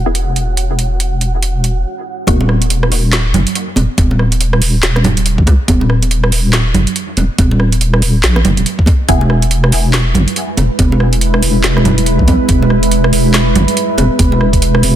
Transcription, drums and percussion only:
0.15 closed hi-hat medium
0.36 closed hi-hat soft
0.57 closed hi-hat medium
0.79 closed hi-hat medium
1.00 closed hi-hat medium
1.21 closed hi-hat medium
1.43 closed hi-hat medium
1.64 closed hi-hat medium
2.27 kick loud
2.27 closed hi-hat medium
2.27 high conga medium
2.41 muted conga medium
2.49 cross-stick medium
2.62 closed hi-hat medium
2.70 closed hi-hat medium
2.83 cross-stick medium
2.92 open hi-hat medium
3.13 snare loud
3.13 clap medium
3.13 closed hi-hat medium
3.34 closed hi-hat medium
3.34 low conga loud
3.47 closed hi-hat medium
3.55 closed hi-hat medium
3.76 closed hi-hat medium
3.76 muted conga medium
3.76 high conga loud
3.98 kick loud
3.98 closed hi-hat medium
3.98 high conga loud
4.11 muted conga medium
4.19 cross-stick medium
4.32 closed hi-hat medium
4.41 closed hi-hat medium
4.53 cross-stick medium
4.62 open hi-hat medium
4.83 snare loud
4.83 clap medium
4.83 closed hi-hat medium
4.96 cross-stick medium
4.96 muted conga medium
5.04 closed hi-hat medium
5.04 low conga loud
5.17 closed hi-hat medium
5.17 muted conga soft
5.26 closed hi-hat medium
5.38 kick medium
5.47 kick loud
5.47 closed hi-hat medium
5.47 muted conga medium
5.47 high conga loud
5.68 kick loud
5.68 closed hi-hat medium
5.68 high conga loud
5.81 muted conga medium
5.90 cross-stick medium
6.03 closed hi-hat medium
6.11 closed hi-hat medium
6.24 cross-stick medium
6.32 open hi-hat medium
6.53 snare loud
6.53 clap medium
6.53 closed hi-hat medium
6.74 closed hi-hat medium
6.74 low conga medium
6.87 closed hi-hat medium
6.96 closed hi-hat medium
7.17 closed hi-hat medium
7.17 muted conga medium
7.17 high conga medium
7.38 kick loud
7.38 closed hi-hat medium
7.38 high conga loud
7.51 muted conga medium
7.60 cross-stick medium
7.72 closed hi-hat medium
7.81 closed hi-hat medium
7.94 cross-stick medium
8.02 open hi-hat medium
8.24 snare loud
8.24 clap medium
8.24 closed hi-hat medium
8.36 cross-stick medium
8.36 muted conga medium
8.45 closed hi-hat soft
8.45 low conga loud
8.57 closed hi-hat soft
8.57 muted conga soft
8.66 closed hi-hat medium
8.79 kick medium
8.86 kick loud
8.86 closed hi-hat soft
8.86 muted conga medium
8.86 high conga medium
9.08 kick loud
9.08 closed hi-hat medium
9.08 high conga loud
9.21 muted conga medium
9.30 cross-stick medium
9.42 closed hi-hat medium
9.51 closed hi-hat medium
9.64 cross-stick medium
9.72 open hi-hat medium
9.94 snare loud
9.94 clap medium
9.94 closed hi-hat medium
10.15 closed hi-hat medium
10.15 low conga medium
10.28 closed hi-hat medium
10.36 closed hi-hat medium
10.57 closed hi-hat medium
10.57 muted conga medium
10.57 high conga medium
10.79 kick loud
10.79 closed hi-hat medium
10.79 high conga loud
10.92 muted conga medium
11.00 cross-stick medium
11.13 closed hi-hat medium
11.21 closed hi-hat medium
11.34 cross-stick medium
11.43 open hi-hat medium
11.64 snare loud
11.64 clap medium
11.64 closed hi-hat medium
11.77 cross-stick medium
11.77 muted conga medium
11.85 closed hi-hat medium
11.85 low conga medium
11.98 closed hi-hat medium
11.98 muted conga soft
12.06 closed hi-hat medium
12.19 kick medium
12.28 kick loud
12.28 closed hi-hat medium
12.28 muted conga medium
12.28 high conga medium
12.48 kick loud
12.48 closed hi-hat medium
12.48 high conga medium
12.62 muted conga medium
12.70 cross-stick medium
12.83 closed hi-hat medium
12.91 closed hi-hat medium
13.04 cross-stick medium
13.13 open hi-hat loud
13.34 snare loud
13.34 clap medium
13.34 closed hi-hat medium
13.55 closed hi-hat medium
13.55 low conga medium
13.68 closed hi-hat medium
13.77 closed hi-hat medium
13.98 closed hi-hat medium
13.98 muted conga medium
13.98 high conga medium
14.19 kick loud
14.19 closed hi-hat medium
14.19 high conga loud
14.32 muted conga medium
14.41 cross-stick medium
14.53 kick medium
14.53 closed hi-hat medium
14.62 closed hi-hat medium
14.75 cross-stick medium
14.83 open hi-hat loud
14.83 high conga medium

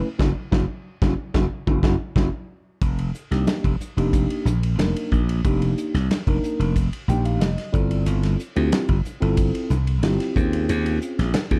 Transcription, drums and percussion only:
0.19 kick medium
0.19 snare medium
0.19 high conga medium
0.52 kick medium
0.52 snare medium
0.52 high conga medium
1.02 kick medium
1.02 snare medium
1.02 high conga medium
1.34 kick medium
1.34 snare medium
1.34 high conga medium
1.67 kick medium
1.67 high conga medium
1.83 kick medium
1.83 snare medium
1.83 high conga medium
2.16 kick medium
2.16 snare medium
2.16 high conga medium
2.82 kick loud
2.82 hi-hat pedal medium
2.82 ride medium
2.82 muted conga soft
2.99 ride soft
3.15 hi-hat pedal medium
3.32 snare soft
3.32 ride soft
3.47 snare medium
3.47 hi-hat pedal medium
3.47 ride medium
3.47 high conga medium
3.64 kick medium
3.64 ride medium
3.81 hi-hat pedal medium
3.81 muted conga soft
3.98 ride medium
4.13 kick medium
4.13 hi-hat pedal medium
4.13 ride medium
4.13 muted conga soft
4.30 ride medium
4.46 hi-hat pedal medium
4.46 muted conga soft
4.46 high conga medium
4.63 ride medium
4.79 snare medium
4.79 hi-hat pedal medium
4.79 ride medium
4.79 high conga medium
4.96 ride medium
5.12 kick medium
5.12 hi-hat pedal medium
5.29 ride medium
5.45 kick medium
5.45 hi-hat pedal medium
5.45 ride medium
5.45 muted conga soft
5.62 ride medium
5.77 hi-hat pedal medium
5.95 snare soft
5.95 ride soft
6.11 snare medium
6.11 hi-hat pedal medium
6.11 ride medium
6.11 high conga medium
6.27 kick medium
6.27 ride medium
6.44 hi-hat pedal medium
6.44 muted conga soft
6.61 ride medium
6.76 kick medium
6.76 hi-hat pedal medium
6.76 ride medium
6.76 muted conga soft
6.93 ride medium
7.08 hi-hat pedal medium
7.08 muted conga soft
7.08 high conga medium
7.25 ride medium
7.41 snare loud
7.41 hi-hat pedal medium
7.41 ride medium
7.41 high conga medium
7.58 snare soft
7.58 ride soft
7.74 kick medium
7.74 hi-hat pedal medium
7.91 ride medium
8.06 hi-hat pedal medium
8.06 ride medium
8.06 muted conga soft
8.23 snare soft
8.23 ride medium
8.39 hi-hat pedal medium
8.56 ride medium
8.72 snare medium
8.72 hi-hat pedal medium
8.72 ride medium
8.72 high conga medium
8.89 kick medium
8.89 ride medium
9.05 hi-hat pedal medium
9.05 muted conga soft
9.22 ride medium
9.37 kick medium
9.37 hi-hat pedal medium
9.37 ride medium
9.37 muted conga soft
9.55 ride medium
9.70 hi-hat pedal medium
9.70 muted conga soft
9.70 high conga medium
9.87 ride medium
10.03 snare loud
10.03 hi-hat pedal medium
10.03 ride medium
10.03 high conga medium
10.20 snare soft
10.20 ride medium
10.36 kick medium
10.36 hi-hat pedal medium
10.53 ride medium
10.69 hi-hat pedal medium
10.69 ride medium
10.69 muted conga soft
10.86 ride medium
11.02 hi-hat pedal medium
11.19 snare soft
11.19 ride medium
11.34 snare medium
11.34 hi-hat pedal medium
11.34 ride medium
11.34 high conga medium
11.51 kick medium
11.51 ride medium

